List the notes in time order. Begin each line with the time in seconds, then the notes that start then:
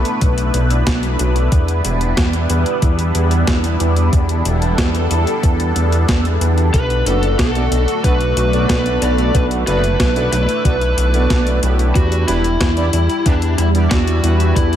Already playing: A3 B3 D4 E4 B4
0.05 closed hi-hat
0.21 B1, kick, closed hi-hat
0.38 closed hi-hat
0.54 B1, closed hi-hat
0.70 closed hi-hat
0.87 B1, kick, snare, closed hi-hat
1.03 closed hi-hat
1.19 B1, closed hi-hat
1.36 closed hi-hat
1.52 E2 G3 B3, kick, closed hi-hat
1.68 closed hi-hat
1.84 E1, closed hi-hat
2.01 closed hi-hat
2.17 E2, kick, snare, closed hi-hat
2.33 closed hi-hat
2.50 E2, closed hi-hat
2.66 closed hi-hat
2.82 E2, kick, closed hi-hat
2.99 closed hi-hat
3.15 E2, closed hi-hat
3.31 closed hi-hat
3.47 E2, kick, snare, closed hi-hat
3.64 closed hi-hat
3.80 E2, closed hi-hat
3.96 closed hi-hat
4.13 E2 A4, kick, closed hi-hat
4.29 closed hi-hat
4.45 E1, closed hi-hat
4.62 closed hi-hat
4.78 E2, kick, snare, closed hi-hat
4.95 closed hi-hat
5.11 E2, closed hi-hat
5.27 closed hi-hat
5.43 E2, kick, closed hi-hat
5.60 closed hi-hat
5.76 E2, closed hi-hat
5.92 closed hi-hat
6.09 E2, kick, snare, closed hi-hat
6.25 closed hi-hat
6.41 E2, closed hi-hat
6.58 closed hi-hat
6.74 B1 A3 F#4 B4, kick, closed hi-hat
6.90 closed hi-hat
7.06 F#1 B3 D4 F#4 A4 B4, closed hi-hat
7.23 closed hi-hat
7.39 B1 A4, kick, snare, closed hi-hat
7.55 B3 D4 F#4 A4 D5, closed hi-hat
7.71 B1, closed hi-hat
7.88 closed hi-hat
8.04 B1 B3 D4 F#4 A4 B4, kick, closed hi-hat
8.21 closed hi-hat
8.37 B1, closed hi-hat
8.53 B3 D4 F#4 A4 D5, closed hi-hat
8.69 B1 B4, kick, snare, closed hi-hat
8.86 closed hi-hat
9.02 B1 B3 D4 F#4 A4 B4 D5, closed hi-hat
9.18 closed hi-hat
9.35 B1 E4 B4, kick, closed hi-hat
9.51 closed hi-hat
9.67 F#1 B3 D4 F#4 A4 B4, closed hi-hat
9.84 closed hi-hat
10.00 B1, kick, snare, closed hi-hat
10.16 B3 D4 F#4 A4 D5, closed hi-hat
10.32 B1 B4, closed hi-hat
10.49 closed hi-hat
10.65 B1 B3 D4 F#4 A4 B4, kick, closed hi-hat
10.81 closed hi-hat
10.97 B1, closed hi-hat
11.14 B3 D4 F#4 A4 D5, closed hi-hat
11.30 B1, kick, snare, closed hi-hat
11.47 closed hi-hat
11.63 B1 B3 D4 E4 G4 B4, closed hi-hat
11.79 closed hi-hat
11.95 E2 G3 E4 F#4, kick, closed hi-hat
12.12 closed hi-hat
12.28 E1 B3 D4 E4 G4 B4, closed hi-hat
12.44 closed hi-hat
12.61 E2, kick, snare, closed hi-hat
12.77 B3 D4 E4 G4 D5, closed hi-hat
12.93 E2, closed hi-hat
13.10 closed hi-hat
13.26 E2 B3 D4 E4 G4 B4, kick, closed hi-hat
13.42 closed hi-hat
13.58 E2 E4, closed hi-hat
13.75 B3 D4 E4 G4 D5, closed hi-hat
13.91 E2 F#4, kick, snare, closed hi-hat
14.07 closed hi-hat
14.23 E2 G3 B3 D4 E4 B4, closed hi-hat
14.40 closed hi-hat
14.56 E2 E4, kick, closed hi-hat
14.73 closed hi-hat